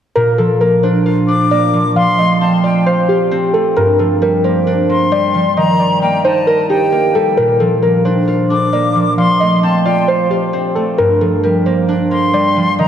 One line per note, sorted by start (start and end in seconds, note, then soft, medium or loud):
0.15 2.01 A#2 medium
0.15 0.37 A#4 loud
0.38 1.72 F3 medium
0.38 0.59 A4 medium
0.61 1.51 A#3 medium
0.61 0.82 A#4 medium
0.83 1.28 D4 medium
0.83 1.47 C5 medium
1.06 2.63 F4 medium
1.28 4.08 D4 medium
1.28 1.92 D6 medium
1.51 2.25 A#3 medium
1.51 1.72 D5 medium
1.73 1.95 F3 medium
1.96 3.81 F3 medium
1.96 2.17 F5 medium
1.96 2.38 C6 loud
2.18 3.53 A3 medium
2.18 2.61 D#5 medium
2.41 3.31 C4 medium
2.41 2.62 A5 medium
2.64 3.09 F4 medium
2.64 2.85 D5 medium
2.64 2.85 G5 medium
2.86 3.07 C5 medium
2.86 4.53 F5 medium
3.09 5.61 F4 medium
3.09 3.51 G4 medium
3.31 6.31 C4 medium
3.53 4.50 A3 medium
3.53 3.75 A4 medium
3.76 5.62 G2 medium
3.76 3.98 A#4 loud
3.99 5.33 F3 medium
3.99 4.20 A4 medium
4.22 5.10 G3 medium
4.22 4.43 A#4 medium
4.44 4.89 A#3 medium
4.44 5.08 C5 medium
4.67 5.63 D4 medium
4.89 6.02 A#3 medium
4.89 5.53 C6 medium
5.12 5.62 G3 loud
5.12 5.33 D5 medium
5.34 5.62 F3 medium
5.57 7.42 D#3 medium
5.57 5.78 D#5 medium
5.57 5.99 A#5 loud
5.79 7.14 G3 medium
5.79 6.22 D5 medium
6.02 6.92 A#3 medium
6.02 6.23 G5 medium
6.24 6.69 D#4 medium
6.24 6.46 C5 medium
6.24 6.67 A5 medium
6.47 6.68 A#4 medium
6.47 8.11 D#5 medium
6.70 8.11 D#4 medium
6.70 7.12 G4 medium
6.70 7.33 G5 medium
6.92 7.82 A#3 medium
7.15 7.42 G3 medium
7.15 7.36 A4 medium
7.37 9.23 A#2 medium
7.37 7.59 A#4 loud
7.60 8.94 F3 medium
7.60 7.81 A4 medium
7.82 8.72 A#3 medium
7.82 8.04 A#4 medium
8.05 8.50 D4 medium
8.05 8.69 C5 medium
8.28 9.85 F4 medium
8.50 11.30 D4 medium
8.50 9.14 D6 medium
8.73 9.47 A#3 medium
8.73 8.94 D5 medium
8.95 9.17 F3 medium
9.18 11.03 F3 medium
9.18 9.39 F5 medium
9.18 9.60 C6 loud
9.40 10.75 A3 medium
9.40 9.83 D#5 medium
9.63 10.53 C4 medium
9.63 9.84 A5 medium
9.85 10.30 F4 medium
9.85 10.07 D5 medium
9.85 10.07 G5 medium
10.08 10.29 C5 loud
10.08 11.74 F5 medium
10.30 12.83 F4 medium
10.30 10.73 G4 medium
10.53 12.88 C4 medium
10.75 11.72 A3 medium
10.75 10.97 A4 medium
10.98 12.84 G2 medium
10.98 11.19 A#4 loud
11.21 12.55 F3 medium
11.21 11.42 A4 medium
11.43 12.32 G3 medium
11.43 11.65 A#4 medium
11.66 12.11 A#3 medium
11.66 12.30 C5 medium
11.89 12.85 D4 medium
12.11 12.88 A#3 medium
12.11 12.75 C6 medium
12.33 12.84 G3 loud
12.33 12.55 D5 medium
12.56 12.84 F3 medium
12.79 12.88 D#3 medium
12.79 12.88 D#5 medium
12.79 12.88 A#5 loud